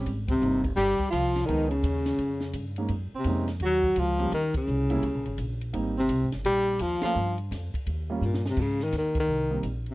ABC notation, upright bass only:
X:1
M:4/4
L:1/8
Q:"Swing" 1/4=169
K:Ebmix
V:1 name="Upright bass" clef=bass
A,,,2 G,,,2 G,,, z C,,2 | D,,2 E,,2 F,,2 G,,2 | _G,, z F,,2 E,,2 D,,2 | E,,2 C,,2 (3D,, B,,, G,,, B,,,2 |
A,,,2 (3C,, A,,, G,,, B,,,2 E,, z | G,,2 F,, z E,,2 G,,2 | [K:Ab] A,,2 E,,2 C,,2 B,,,2 |]